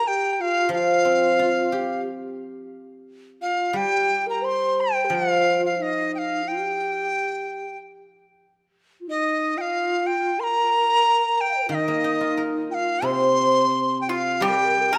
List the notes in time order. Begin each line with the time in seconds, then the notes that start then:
Already playing: D#3
0.06 G4 G5
0.33 G5
0.39 F4 F5
0.69 F3 F4
0.73 F5
1.05 C4
1.39 F4
1.72 G4
3.41 F4 F5
3.73 G3 G4 G5
4.26 A#4 A#5
4.42 C5 C6
4.81 G5
5.04 G4
5.10 F3 F4
5.15 F5
5.66 F5
5.78 D#4 D#5
6.15 F5 G5
6.45 G4 G5
9.00 F4
9.07 D#4 D#5
9.56 F4 G5
9.61 F5
10.07 G5
10.38 A#4 C6
10.43 A#5
11.37 G5 A#5
11.47 F5 G5
11.53 C5 D#5
11.62 A#4
11.67 D#3 D#4 F4 F5
11.74 D#5
11.88 A#3
12.04 D#4
12.21 F4
12.37 A#4
12.70 F4 G5
12.74 F5
13.02 C3 C5 C6
14.01 G5
14.06 F4 F5
14.40 G3 G4 G5, high woodblock
14.49 A#4
14.57 G4
14.65 A#4
14.74 G4
14.81 A#4
14.91 G4 A#4 A#5